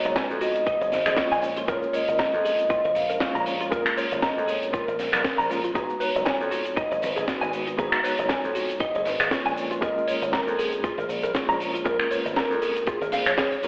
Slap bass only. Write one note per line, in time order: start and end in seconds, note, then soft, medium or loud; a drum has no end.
0.05 0.21 F#1 medium
0.30 0.67 F2 medium
0.67 0.77 G#2 medium
0.81 0.89 F#1 medium
0.92 1.02 G#1 loud
1.07 1.14 G#1 medium
1.32 1.63 A#1 medium
1.68 1.78 A#1 loud
2.08 2.25 G#1 medium
2.34 2.70 F2 medium
2.70 2.80 A#2 medium
2.85 2.92 G#1 medium
2.96 3.06 A#1 loud
3.10 3.18 A#1 medium
3.35 3.66 A#1 medium
3.72 3.82 A#1 loud
4.12 4.28 G#1 medium
4.37 4.74 F2 medium
4.74 4.83 A#2 medium
4.88 4.96 G#1 medium
4.99 5.09 A#1 medium
5.14 5.21 A#1 medium
5.39 5.70 A#1 medium
5.75 5.85 G#1 loud
6.15 6.32 F#1 medium
6.40 6.77 F2 medium
6.77 6.87 G#2 medium
6.91 6.99 F#1 medium
7.03 7.12 G#1 medium
7.16 7.24 G#1 medium
7.42 7.73 G#1 medium
7.79 7.88 G#1 loud
8.19 8.35 F#1 medium
8.44 8.80 F2 medium
8.80 8.90 G#2 medium
8.95 9.03 F#1 medium
9.06 9.16 G#1 medium
9.20 9.28 G#1 medium
9.46 9.77 A#1 medium
9.82 9.92 A#1 loud
10.22 10.38 G#1 medium
10.47 10.84 F2 medium
10.84 10.94 A#2 medium
10.98 11.06 G#1 medium
11.09 11.19 A#1 loud
11.23 11.31 A#1 medium
11.48 11.80 A#1 medium
11.86 11.95 A#1 loud
12.25 12.42 G#1 medium
12.50 12.87 F2 medium
12.87 12.97 A#2 medium
13.01 13.09 G#1 medium
13.12 13.22 A#1 loud
13.27 13.35 A#1 medium
13.64 muted slap bass stroke soft